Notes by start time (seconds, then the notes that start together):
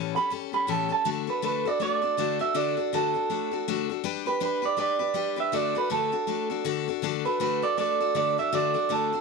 Already playing: A2 E3 G3 C#4 G4 A4
0.15 G3 C#4 G4 A4 B5
0.30 G3 C#4 G4 A4
0.52 G3 C#4 G4 A4 B5
0.67 A2 E3 G3 C#4 G4 A4 A5
0.89 G3 C#4 G4 A4 A5
1.05 D3 A3 D4 F#4 A4
1.27 D4 F#4 A4 B4
1.42 D3 A3 D4 F#4 A4 B4
1.65 D4 F#4 A4 D5
1.80 A3 D4 F#4 A4 D5
2.02 D4 F#4 A4
2.17 D3 A3 D4 F#4 A4
2.39 D4 F#4 A4 E5
2.54 D3 A3 D4 F#4 A4 D5
2.77 D4 F#4 A4
2.93 D3 A3 D4 F#4 A4
3.14 D4 F#4 A4
3.30 A3 D4 F#4 A4
3.51 D4 F#4 A4
3.68 D3 A3 D4 F#4 A4
3.89 D4 F#4 A4
4.04 G3 D4 G4 B4
4.26 D4 G4 B4
4.40 G3 D4 G4 B4
4.62 D4 G4 B4 D5
4.77 G3 D4 G4 B4 D5
4.99 D4 G4 B4
5.14 G3 D4 G4 B4
5.36 D4 G4 B4 E5
5.52 D3 A3 D4 F#4 A4 D5
5.75 D4 F#4 A4 B4
5.90 D3 A3 D4 F#4 A4
6.12 D4 F#4 A4
6.27 A3 D4 F#4 A4
6.50 D4 F#4 A4
6.64 D3 A3 D4 F#4 A4
6.88 D4 F#4 A4
7.02 D3 A3 D4 F#4 A4
7.25 D4 F#4 A4 B4
7.40 D3 A3 D4 F#4 A4 B4
7.62 D4 F#4 A4 D5
7.77 A3 D4 F#4 A4 D5
8.00 D4 F#4 A4
8.15 D3 A3 D4 F#4 A4 D5
8.38 D4 F#4 A4 E5
8.53 D3 A3 D4 F#4 A4 D5
8.74 D4 F#4 A4
8.89 D3 A3 D4 F#4 A4
9.13 D4 F#4 A4